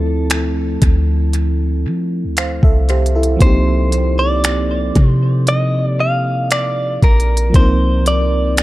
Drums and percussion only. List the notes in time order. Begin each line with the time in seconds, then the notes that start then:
0.30 finger snap, closed hi-hat
0.82 kick, closed hi-hat
1.33 closed hi-hat
2.37 finger snap, closed hi-hat
2.63 kick
2.89 closed hi-hat
3.06 closed hi-hat
3.23 closed hi-hat
3.40 kick, closed hi-hat
3.92 closed hi-hat
4.44 finger snap, closed hi-hat
4.95 kick, closed hi-hat
5.47 closed hi-hat
6.51 finger snap, closed hi-hat
7.02 kick, closed hi-hat
7.20 closed hi-hat
7.37 closed hi-hat
7.54 kick, closed hi-hat
8.06 closed hi-hat
8.57 finger snap, closed hi-hat